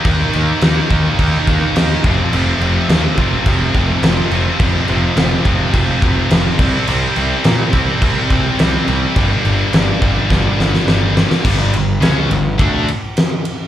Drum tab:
CC |x-x-x-x-x-x-x-x-|x-x-x-x-x-x-x-x-|x-x-x-x-x-x-x-x-|x-x-x-x-x-x-x-x-|
RD |----------------|----------------|----------------|----------------|
SD |----o-------o---|----o-------o---|----o-------o---|----o-------o---|
BD |o-----o-o-o---o-|------o-o-o-----|o-----o-o-o---o-|------o-o-o-----|

CC |x-x-x-x---------|x---------------|
RD |----------------|--x-x-x-x-x-x-x-|
SD |----o---o-ooo-oo|----o-------o---|
BD |o-----o-o-------|o-------o-------|